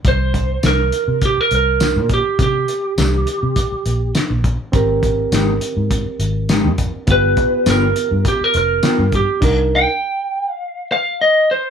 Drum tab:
CC |--------|--------|--------|--------|
HH |xxxxxxxx|xxxxxxxx|xxxxxxxx|xxxxxxxx|
TB |--x---x-|--x---x-|--x---x-|--x---x-|
SD |--o---o-|--o---o-|--o---o-|--o---o-|
BD |oo--o--o|o---o--o|oo--o--o|oo--o--o|

CC |x-------|
HH |x-------|
TB |--------|
SD |--------|
BD |o-------|